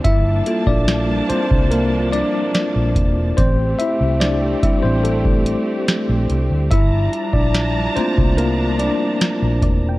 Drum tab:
HH |x-x-x-x-x-x-x-x-|x-x-x-x-x-x-x-x-|x-x-x-x-x-x-x-x-|
SD |----o-------o---|----o-------o---|----o-------o---|
BD |o--o---o------o-|o-----o--o------|o--o---o------o-|